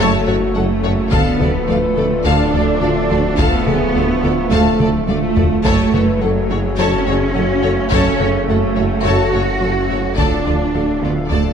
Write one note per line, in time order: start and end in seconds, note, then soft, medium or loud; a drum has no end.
0.00 0.10 F#1 medium
0.00 1.13 F#1 medium
0.00 0.16 F#2 loud
0.00 1.08 C#3 medium
0.00 0.16 F#3 loud
0.00 0.55 A3 medium
0.00 1.08 A3 medium
0.00 1.09 A3 medium
0.00 1.09 F#4 medium
0.00 0.25 A4 medium
0.00 0.28 A4 medium
0.00 1.09 A4 medium
0.00 0.26 C#5 medium
0.00 1.09 C#5 medium
0.00 0.25 A5 medium
0.27 0.40 F#1 medium
0.27 0.44 F#2 medium
0.27 0.36 F#2 medium
0.27 0.44 A3 medium
0.27 0.35 F#4 medium
0.27 0.56 F#4 medium
0.27 0.35 A4 medium
0.27 0.35 C#5 medium
0.55 0.68 F#1 medium
0.55 0.64 F#2 medium
0.55 0.73 F#3 medium
0.55 1.11 A3 medium
0.55 0.73 C#4 medium
0.55 1.13 C#4 medium
0.55 0.63 A4 medium
0.55 0.63 F#5 medium
0.83 0.96 F#1 medium
0.83 1.01 F#2 medium
0.83 0.92 F#2 medium
0.83 1.01 A3 medium
0.83 0.91 F#4 medium
0.83 0.91 A4 medium
0.83 0.92 C#5 medium
1.11 5.66 D1 medium
1.11 1.29 D2 loud
1.11 1.24 D2 medium
1.11 1.21 D2 medium
1.11 1.29 D3 loud
1.11 5.48 F3 medium
1.11 5.48 A3 medium
1.11 5.61 A3 medium
1.11 1.69 B3 loud
1.11 1.40 D4 medium
1.11 5.66 F4 medium
1.11 1.38 A4 medium
1.11 5.61 A4 medium
1.11 1.38 F5 medium
1.11 1.39 A5 medium
1.11 taiko loud
1.39 1.57 D2 medium
1.39 1.52 D2 medium
1.39 1.49 D2 medium
1.39 1.57 F3 medium
1.39 1.47 A4 medium
1.39 1.48 A4 medium
1.39 2.25 B4 medium
1.39 1.50 D5 medium
1.39 taiko mid medium
1.67 1.86 D2 medium
1.67 1.77 D2 medium
1.67 1.81 D2 medium
1.67 1.86 F3 medium
1.67 2.25 A3 medium
1.67 1.77 A4 medium
1.67 1.75 D5 medium
1.67 1.78 F5 medium
1.96 2.05 D2 medium
1.96 2.09 D2 medium
1.96 2.14 D3 medium
1.96 2.14 A3 medium
1.96 2.04 A4 medium
1.96 2.05 A4 medium
1.96 2.06 D5 medium
2.25 2.42 D2 loud
2.25 2.34 D2 medium
2.25 2.37 D2 medium
2.25 2.42 D3 loud
2.25 3.38 D4 loud
2.25 2.52 A4 medium
2.25 2.82 A4 medium
2.25 2.51 F5 medium
2.25 2.52 A5 medium
2.53 2.71 D2 medium
2.53 2.65 D2 medium
2.53 2.62 D2 medium
2.53 2.71 F3 medium
2.53 2.61 A4 medium
2.53 2.62 A4 medium
2.53 2.63 D5 medium
2.81 2.93 D2 medium
2.81 2.90 D2 medium
2.81 2.98 D3 medium
2.81 2.99 A3 medium
2.81 3.10 F4 medium
2.81 2.90 A4 medium
2.81 2.90 D5 medium
2.81 2.90 F5 medium
3.10 3.22 D2 medium
3.10 3.27 D2 medium
3.10 3.19 D2 medium
3.10 3.28 F3 medium
3.10 3.39 F#4 medium
3.10 3.18 A4 medium
3.10 3.19 D5 medium
3.38 3.50 D2 medium
3.38 3.47 D2 medium
3.38 3.56 D2 medium
3.38 3.56 D3 medium
3.38 4.52 B3 loud
3.38 3.66 F4 medium
3.38 3.65 A4 medium
3.38 3.64 F5 medium
3.38 3.65 A5 medium
3.38 taiko loud
3.66 3.75 D2 medium
3.66 3.78 D2 medium
3.66 3.84 D2 medium
3.66 3.84 F3 medium
3.66 3.95 G#4 medium
3.66 3.74 A4 medium
3.66 3.75 A4 medium
3.66 3.75 D5 medium
3.66 taiko mid medium
3.95 4.12 D2 medium
3.95 4.06 D2 medium
3.95 4.03 D2 medium
3.95 4.12 F3 medium
3.95 4.24 F#4 medium
3.95 4.04 A4 medium
3.95 4.03 D5 soft
3.95 4.04 F5 medium
4.23 4.35 D2 medium
4.23 4.32 D2 medium
4.23 4.40 D3 medium
4.23 4.40 A3 medium
4.23 4.52 F4 medium
4.23 4.32 A4 medium
4.23 4.33 D5 medium
4.51 4.68 D2 loud
4.51 4.63 D2 medium
4.51 4.60 D2 medium
4.51 4.68 D3 medium
4.51 5.07 A3 medium
4.51 4.91 A4 loud
4.51 4.78 A4 medium
4.51 4.78 F5 medium
4.51 4.78 A5 medium
4.79 4.97 D2 medium
4.79 4.88 D2 medium
4.79 4.92 D2 medium
4.79 4.96 F3 medium
4.79 4.87 A4 medium
4.79 4.89 A4 medium
4.79 4.89 D5 medium
4.79 taiko mid medium
5.07 5.16 D2 medium
5.07 5.20 D2 medium
5.07 5.25 D3 medium
5.07 5.25 A3 medium
5.07 5.63 A3 loud
5.07 5.34 F4 medium
5.07 5.16 A4 medium
5.07 5.16 D5 medium
5.07 5.17 F5 medium
5.07 taiko high medium
5.36 5.48 D2 medium
5.36 5.54 D2 medium
5.36 5.45 D2 medium
5.36 5.54 F3 medium
5.36 5.64 F4 medium
5.36 5.45 A4 medium
5.36 5.44 D5 medium
5.36 taiko low loud
5.64 10.19 F#1 medium
5.64 5.76 F#1 medium
5.64 5.82 F#2 medium
5.64 5.73 F#2 medium
5.64 10.14 C#3 medium
5.64 5.82 F#3 loud
5.64 6.20 A3 loud
5.64 10.14 A3 medium
5.64 5.93 F#4 medium
5.64 10.18 F#4 medium
5.64 10.14 A4 medium
5.64 5.91 A4 medium
5.64 10.17 C#5 medium
5.64 5.92 C#5 loud
5.64 5.91 A5 medium
5.64 taiko loud
5.92 6.05 F#1 medium
5.92 6.10 F#2 medium
5.92 6.02 F#2 medium
5.92 6.10 A3 medium
5.92 6.03 F#4 medium
5.92 6.01 A4 medium
5.92 6.20 B4 medium
5.92 6.02 C#5 medium
5.92 taiko mid medium
6.21 6.34 F#1 medium
6.21 6.38 F#2 medium
6.21 6.30 F#2 medium
6.21 6.78 F#3 loud
6.21 6.38 A3 medium
6.21 6.30 A4 medium
6.21 6.50 A4 medium
6.21 6.30 A4 medium
6.21 6.30 F#5 medium
6.50 6.62 F#1 medium
6.50 6.58 F#2 medium
6.50 6.67 F#3 medium
6.50 6.67 C#4 medium
6.50 6.59 F#4 medium
6.50 6.78 G#4 medium
6.50 6.58 A4 medium
6.50 6.59 C#5 medium
6.78 6.90 F#1 medium
6.78 6.95 F#2 medium
6.78 6.87 F#2 medium
6.78 6.95 F#3 loud
6.78 7.89 C#4 loud
6.78 7.06 F#4 medium
6.78 7.05 A4 medium
6.78 7.05 C#5 medium
6.78 7.04 A5 medium
7.06 7.18 F#1 medium
7.06 7.23 F#2 medium
7.06 7.16 F#2 medium
7.06 7.24 A3 medium
7.06 7.14 F#4 medium
7.06 7.35 G#4 medium
7.06 7.15 A4 medium
7.06 7.14 C#5 medium
7.33 7.46 F#1 medium
7.33 7.44 F#2 medium
7.33 7.52 F#3 medium
7.33 7.52 C#4 medium
7.33 7.90 F#4 medium
7.33 7.41 A4 medium
7.33 7.43 A4 medium
7.33 7.42 F#5 medium
7.62 7.75 F#1 medium
7.62 7.80 F#2 medium
7.62 7.72 F#2 medium
7.62 7.81 A3 medium
7.62 7.70 F#4 medium
7.62 7.72 A4 medium
7.62 7.71 C#5 medium
7.91 8.03 F#1 medium
7.91 8.08 F#2 medium
7.91 7.99 F#2 medium
7.91 8.09 F#3 medium
7.91 8.47 C#4 loud
7.91 8.19 A4 medium
7.91 8.18 A4 medium
7.91 8.18 C#5 loud
7.91 8.18 A5 medium
7.91 taiko medium
8.20 8.32 F#1 medium
8.20 8.37 F#2 medium
8.20 8.28 F#2 medium
8.20 8.37 A3 medium
8.20 8.28 F#4 medium
8.20 8.47 G#4 medium
8.20 8.28 A4 medium
8.20 8.28 C#5 medium
8.20 taiko mid soft
8.48 8.60 F#1 medium
8.48 8.65 F#2 medium
8.48 8.56 F#2 medium
8.48 8.65 A3 medium
8.48 9.04 A3 loud
8.48 9.05 F#4 medium
8.48 8.56 A4 medium
8.48 8.57 A4 medium
8.48 8.57 F#5 medium
8.76 8.88 F#1 medium
8.76 8.85 F#2 medium
8.76 8.94 F#3 medium
8.76 8.94 C#4 medium
8.76 8.85 F#4 medium
8.76 8.85 A4 medium
8.76 8.84 C#5 medium
9.04 9.16 F#1 medium
9.04 9.21 F#2 medium
9.04 9.13 F#2 medium
9.04 9.22 F#3 loud
9.04 10.18 F#4 loud
9.04 9.31 A4 medium
9.04 9.33 A4 medium
9.04 9.31 C#5 medium
9.04 9.31 A5 medium
9.33 9.45 F#1 medium
9.33 9.50 F#2 medium
9.33 9.41 F#2 medium
9.33 9.51 A3 medium
9.33 10.18 C#4 medium
9.33 9.42 F#4 medium
9.33 9.41 A4 medium
9.33 9.42 C#5 medium
9.61 9.73 F#1 medium
9.61 9.70 F#2 medium
9.61 9.78 F#3 medium
9.61 9.79 C#4 medium
9.61 9.70 A4 medium
9.61 9.71 F#5 soft
9.90 10.01 F#1 soft
9.90 10.07 F#2 medium
9.90 9.99 F#2 medium
9.90 10.07 A3 medium
9.90 9.98 F#4 medium
9.90 9.99 A4 medium
9.90 9.98 C#5 medium
10.17 11.53 D1 medium
10.17 10.35 D2 medium
10.17 10.29 D2 medium
10.17 10.27 D2 medium
10.17 11.53 D3 medium
10.17 10.35 D3 medium
10.17 11.53 A3 medium
10.17 11.01 D4 loud
10.17 11.53 D4 medium
10.17 10.74 F4 medium
10.17 10.45 A4 medium
10.17 11.53 A4 medium
10.17 10.44 D5 medium
10.17 11.53 F5 medium
10.17 10.44 A5 medium
10.17 taiko medium
10.46 10.63 D2 medium
10.46 10.58 D2 medium
10.46 10.55 D2 medium
10.46 10.63 F3 medium
10.46 10.54 F4 soft
10.46 10.55 A4 medium
10.46 10.54 D5 soft
10.73 10.91 D2 medium
10.73 10.87 D2 soft
10.73 10.84 D2 soft
10.73 10.91 F3 medium
10.73 11.02 F#4 medium
10.73 10.82 A4 medium
10.73 10.83 F5 soft
11.02 11.12 D2 soft
11.02 11.15 D2 soft
11.02 11.19 D3 medium
11.02 11.19 A3 medium
11.02 11.31 B3 medium
11.02 11.30 F4 medium
11.02 11.11 F4 medium
11.02 11.11 A4 soft
11.02 11.12 D5 soft
11.29 11.48 D2 medium
11.29 11.39 D2 medium
11.29 11.43 D2 medium
11.29 11.48 D3 medium
11.29 11.53 A3 medium
11.29 11.53 A4 medium
11.29 11.53 D5 medium
11.29 11.53 A5 medium